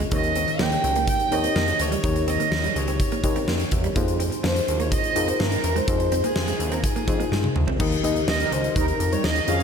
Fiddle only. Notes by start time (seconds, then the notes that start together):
0.13 D#5
0.61 G5
1.09 G5
1.33 D#5
1.81 C#5
2.29 D#5
2.77 C#5
4.45 C5
4.81 C#5
4.93 D#5
5.29 C5
5.40 A#4
5.76 C5
6.25 G#4
6.69 A#4 C5
6.84 G#4
8.28 D#5
8.52 C5
8.76 A#4
9.13 C#5
9.25 D#5
9.49 F5